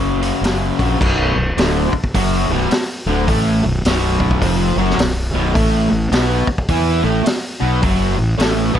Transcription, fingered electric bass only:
0.00 0.31 F#1 medium
0.41 0.70 F#1 medium
0.79 0.96 A#1 medium
1.00 1.33 B0 medium
1.36 1.56 B0 medium
1.57 1.90 D1 medium
1.93 muted fingered electric bass stroke soft
2.15 2.47 F#1 medium
2.49 2.69 B0 loud
2.72 muted fingered electric bass stroke soft
3.06 3.26 D1 loud
3.27 3.60 A1 loud
3.63 3.83 B0 medium
3.85 4.38 B0 medium
4.42 4.75 F1 medium
4.76 4.96 F#1 medium
4.98 5.31 B0 medium
5.34 5.54 B0 medium
5.56 5.88 A1 loud
5.92 6.11 A1 medium
6.11 6.45 B1 medium
6.47 muted fingered electric bass stroke soft
6.69 7.02 E2 medium
7.04 7.24 A1 medium
7.62 7.81 B1 medium
7.84 8.16 F#1 medium
8.19 8.38 A1 medium
8.39 8.72 A1 medium
8.75 8.79 B1 medium

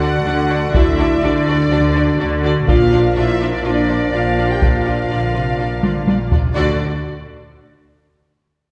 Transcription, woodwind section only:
0.00 2.64 D4 medium
0.00 2.68 F#4 medium
0.00 2.68 A4 medium
0.00 2.64 D5 medium
2.67 6.31 F3 medium
2.67 6.27 D4 medium
2.67 6.31 A#4 medium
2.67 6.27 D5 medium
6.54 6.75 D4 medium
6.54 6.75 F#4 medium
6.54 6.75 A4 medium
6.54 6.75 D5 medium

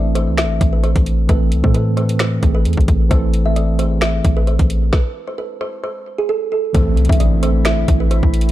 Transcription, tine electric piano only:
0.00 0.14 E3 loud
0.00 0.15 A3 loud
0.00 0.16 C4 medium
0.00 3.12 D4 medium
0.00 0.17 A4 loud
0.14 0.78 E3 medium
0.14 0.79 A3 medium
0.14 0.79 C4 medium
0.14 0.80 A4 medium
1.28 1.52 E3 loud
1.28 1.53 A3 medium
1.28 1.53 C4 medium
1.28 1.54 A4 loud
1.62 1.87 E3 medium
1.62 1.87 A3 medium
1.62 1.88 C4 medium
1.62 1.88 A4 medium
1.96 2.29 E3 medium
1.96 2.29 A3 medium
1.96 2.30 C4 medium
1.96 2.30 B4 medium
2.41 2.89 E3 medium
2.41 2.90 A3 medium
2.41 2.90 C4 medium
2.41 2.91 G#4 medium
3.09 3.34 E3 loud
3.09 3.34 A3 medium
3.09 3.35 C4 medium
3.09 3.35 A4 loud
3.44 3.69 E3 medium
3.44 3.69 A3 medium
3.44 3.70 C4 medium
3.44 3.70 A4 medium
3.78 4.42 E3 medium
3.78 4.42 A3 medium
3.78 4.43 C4 medium
3.78 4.43 G#4 medium
6.73 6.98 E3 loud
6.73 6.98 A3 loud
6.73 6.99 C4 medium
6.73 6.99 A4 loud
7.08 7.32 E3 medium
7.08 7.33 A3 medium
7.08 7.33 C4 medium
7.08 7.34 D4 medium
7.41 8.06 E3 medium
7.41 8.06 A3 medium
7.41 8.07 C4 medium
7.41 8.07 A4 medium

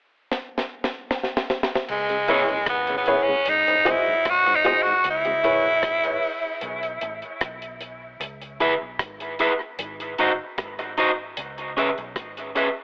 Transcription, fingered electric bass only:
1.90 2.46 C#2 loud
2.50 2.67 B1 medium
2.68 3.05 G#1 loud
3.48 3.85 G#1 medium
3.87 4.06 F#1 medium
4.26 5.01 G#1 medium
5.05 5.62 C#2 loud
5.64 5.83 B1 medium
5.83 6.21 G#1 medium
6.62 7.00 B1 loud
7.02 7.22 A1 loud
7.42 8.17 B1 loud
8.20 8.78 C#2 loud
8.81 8.99 B1 medium
9.00 9.37 G#1 medium
9.79 10.16 G#1 loud
10.19 10.38 F#1 loud
10.58 11.33 G#1 medium
11.38 11.94 C#2 loud
11.98 12.15 B1 medium
12.16 12.53 G#1 medium

